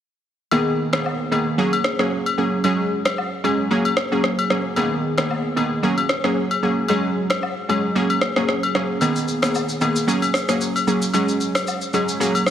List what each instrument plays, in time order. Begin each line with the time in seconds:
0.51 synth pluck D#3 A#3 B3 G#4, high agogo
0.93 synth pluck D#3 A#3 B3 G#4, cross-stick, high agogo
1.06 low woodblock
1.31 synth pluck D#3 A#3 B3 G#4, high agogo
1.58 synth pluck F#3 A#3 C#4 G#4
1.73 high agogo
1.84 cross-stick
1.99 synth pluck F#3 A#3 C#4 G#4, cross-stick
2.26 high agogo
2.38 synth pluck F#3 A#3 C#4 G#4
2.64 synth pluck F#3 G#3 C#4 G#4, high agogo
3.05 cross-stick, high agogo
3.18 low woodblock
3.44 synth pluck F#3 G#3 C#4 G#4, high agogo
3.70 synth pluck F#3 A#3 C#4 G#4
3.85 high agogo
3.97 cross-stick
4.12 synth pluck F#3 A#3 C#4 G#4
4.24 cross-stick
4.39 high agogo
4.50 synth pluck F#3 A#3 C#4 G#4, cross-stick
4.76 synth pluck D#3 A#3 B3 G#4, high agogo
5.18 synth pluck D#3 A#3 B3 G#4, cross-stick, high agogo
5.31 low woodblock
5.56 synth pluck D#3 A#3 B3 G#4, high agogo
5.83 synth pluck F#3 A#3 C#4 G#4
5.98 high agogo
6.09 cross-stick
6.24 synth pluck F#3 A#3 C#4 G#4, cross-stick
6.51 high agogo
6.63 synth pluck F#3 A#3 C#4 G#4
6.88 synth pluck F#3 G#3 C#4 G#4, high agogo
7.30 cross-stick, high agogo
7.43 low woodblock
7.69 synth pluck F#3 G#3 C#4 G#4, high agogo
7.95 synth pluck F#3 A#3 C#4 G#4
8.10 high agogo
8.21 cross-stick
8.36 synth pluck F#3 A#3 C#4 G#4, cross-stick
8.49 cross-stick
8.63 high agogo
8.75 synth pluck F#3 A#3 C#4 G#4, cross-stick
9.01 synth pluck D#3 A#3 B3 G#4, high agogo, shaker
9.16 shaker
9.28 shaker
9.42 synth pluck D#3 A#3 B3 G#4, cross-stick, high agogo, shaker
9.55 low woodblock, shaker
9.69 shaker
9.81 synth pluck D#3 A#3 B3 G#4, high agogo, shaker
9.96 shaker
10.07 synth pluck F#3 A#3 C#4 G#4, shaker
10.22 high agogo, shaker
10.34 cross-stick, shaker
10.48 synth pluck F#3 A#3 C#4 G#4, cross-stick, shaker
10.61 shaker
10.76 high agogo, shaker
10.87 synth pluck F#3 A#3 C#4 G#4, shaker
11.02 shaker
11.14 synth pluck F#3 G#3 C#4 G#4, high agogo, shaker
11.28 shaker
11.40 shaker
11.55 cross-stick, high agogo, shaker
11.67 low woodblock, shaker
11.81 shaker
11.93 synth pluck F#3 G#3 C#4 G#4, high agogo, shaker
12.08 shaker
12.20 synth pluck F#3 A#3 C#4 G#4, shaker
12.35 high agogo, shaker
12.46 cross-stick, shaker